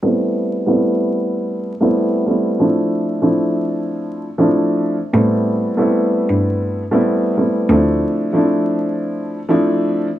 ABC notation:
X:1
M:4/4
L:1/16
Q:"Swing 16ths" 1/4=94
K:Am
V:1 name="Upright piano"
[G,A,B,CE]4 [G,A,B,CE]6 z [G,A,B,CE]3 [G,A,B,CE]2 | [F,A,CDE]4 [F,A,CDE]6 z [F,A,CDE]4 z | [G,A,B,CE]4 [G,A,B,CE]6 z [G,A,B,CE]3 [G,A,B,CE]2 | [F,A,CDE]4 [F,A,CDE]6 z [F,A,CDE]4 z |]
V:2 name="Cello" clef=bass
z16 | z16 | A,,3 z4 G,,4 z4 z | D,,2 z12 z2 |]